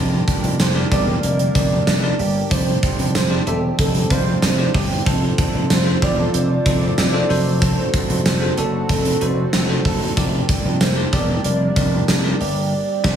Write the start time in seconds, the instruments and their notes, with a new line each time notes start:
Already playing: slap bass F1, analog synth pad D3 G3 A#3, clean electric guitar F3 D4 G4, tine electric piano D4 G4 A#4 D5
0.28 clean electric guitar D4, kick, closed hi-hat
0.44 slap bass F1, closed hi-hat
0.59 slap bass F1, clean electric guitar A#3, soft synth lead C5, snare, closed hi-hat, tambourine
0.75 tine electric piano D4 G4 A#4 D5
0.91 slap bass E1, tine electric piano D4 G4 A#4 D5, clean electric guitar G4, soft synth lead D5, kick, closed hi-hat
1.23 slap bass F1, clean electric guitar A#3, soft synth lead D5, closed hi-hat
1.39 closed hi-hat
1.55 slap bass F1, tine electric piano D4 G4 A#4 D5, clean electric guitar D4, kick, closed hi-hat
1.87 slap bass F1, clean electric guitar A#3, snare, closed hi-hat, tambourine
2.02 tine electric piano D4 G4 A#4 D5
2.19 slap bass G1, clean electric guitar G4, open hi-hat
2.50 slap bass F1, clean electric guitar F3 G4, analog synth pad C4, tine electric piano D4 G4 C5 D5, soft synth lead C5, kick, closed hi-hat
2.83 clean electric guitar D4, kick, closed hi-hat
2.99 slap bass F1, closed hi-hat
3.15 slap bass F1, clean electric guitar C4, soft synth lead C5, snare, closed hi-hat, tambourine
3.30 tine electric piano D4 G4 C5 D5
3.46 slap bass E1, tine electric piano D4 G4 C5 E5, clean electric guitar G4, soft synth lead A4, closed hi-hat
3.79 slap bass F1, clean electric guitar C4, soft synth lead A4, kick, closed hi-hat
3.95 closed hi-hat
4.10 slap bass F1, tine electric piano D4 G4 C5 F5, clean electric guitar D4, soft synth lead C5, kick, closed hi-hat
4.42 slap bass F1, clean electric guitar C4, snare, closed hi-hat, tambourine
4.58 tine electric piano D4 G4 C5 D5
4.74 slap bass G1, clean electric guitar G4, kick, open hi-hat
5.06 slap bass F1, analog synth pad F3 A3 F4, clean electric guitar F3 A4, tine electric piano D4 F4 A4 C5, kick, closed hi-hat
5.38 clean electric guitar D4, kick, closed hi-hat
5.54 slap bass F1
5.70 slap bass F1, clean electric guitar C4, soft synth lead C5, snare, closed hi-hat, tambourine
5.86 tine electric piano D4 F4 A4 C5
6.02 slap bass E1, tine electric piano D4 F4 A4 C5, clean electric guitar G4, soft synth lead D5, kick, closed hi-hat
6.18 clean electric guitar A4
6.34 slap bass F1, clean electric guitar C4, soft synth lead D5, closed hi-hat
6.65 slap bass F1, tine electric piano D4 F4 A4 C5, clean electric guitar D4, kick, closed hi-hat
6.98 slap bass F1, clean electric guitar C4, snare, closed hi-hat, tambourine
7.13 tine electric piano D4 F4 A4 C5
7.29 slap bass F1, analog synth pad F#3 F#4, clean electric guitar F#3, tine electric piano D4 F#4 A4 C5, open hi-hat
7.62 clean electric guitar F#3 A4, soft synth lead C5, kick, closed hi-hat
7.94 clean electric guitar D4, kick, closed hi-hat
8.10 slap bass F1, closed hi-hat
8.25 slap bass F1, clean electric guitar C4, soft synth lead C5, snare, closed hi-hat, tambourine
8.41 tine electric piano D4 F#4 A4 C5
8.57 slap bass F#1, tine electric piano D4 F#4 A4 D5, clean electric guitar A4, soft synth lead A4, closed hi-hat
8.89 slap bass F1, clean electric guitar C4, soft synth lead A4, kick, closed hi-hat
9.05 closed hi-hat
9.21 slap bass F1, tine electric piano D4 F#4 A4 C5, clean electric guitar D4, soft synth lead C5, closed hi-hat
9.53 slap bass F1, clean electric guitar C4, snare, closed hi-hat, tambourine
9.69 tine electric piano D4 F#4 A4 C5
9.85 slap bass F#1, clean electric guitar A4, kick, open hi-hat
10.16 slap bass F1, clean electric guitar F3 G4, analog synth pad G3 A#3 D4, tine electric piano D4 G4 A#4 D5, kick, closed hi-hat
10.49 clean electric guitar D4, kick, closed hi-hat
10.65 slap bass F1
10.81 slap bass F1, clean electric guitar A#3, soft synth lead C5, snare, closed hi-hat, tambourine
10.96 tine electric piano D4 G4 A#4 D5
11.13 slap bass E1, tine electric piano D4 G4 A#4 D5, clean electric guitar G4, soft synth lead D5, kick, closed hi-hat
11.44 slap bass F1, clean electric guitar A#3, soft synth lead D5, closed hi-hat
11.76 slap bass F1, tine electric piano D4 G4 A#4 D5, clean electric guitar D4, kick, closed hi-hat
12.08 slap bass F1, clean electric guitar A#3, snare, closed hi-hat, tambourine
12.24 tine electric piano D4 G4 A#4 D5
12.40 slap bass G1, clean electric guitar G4, soft synth lead D5, open hi-hat
12.72 analog synth pad G3 C4
13.04 slap bass F1, tine electric piano D4 G4 C5 D5, kick, snare, crash